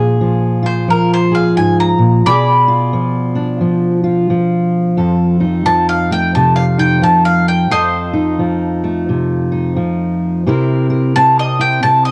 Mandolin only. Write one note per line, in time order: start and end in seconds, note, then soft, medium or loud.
0.66 0.88 C5 medium
0.90 1.11 A#4 medium
1.14 1.34 C5 medium
1.35 1.56 F5 medium
1.57 1.79 G#5 medium
1.80 2.24 A#5 medium
2.26 3.58 D5 medium
2.26 3.58 B5 loud
5.66 5.88 A5 loud
5.89 6.11 F5 loud
6.12 6.34 G5 medium
6.35 6.55 A5 medium
6.56 6.78 F5 medium
6.79 7.01 G5 medium
7.04 7.25 A5 medium
7.25 7.47 F5 loud
7.48 7.70 G5 medium
7.72 8.36 C5 medium
7.72 8.38 D#5 medium
11.16 11.37 A5 loud
11.39 11.60 D#5 medium
11.61 11.82 G5 loud
11.83 12.05 A5 medium
12.05 12.11 D#5 medium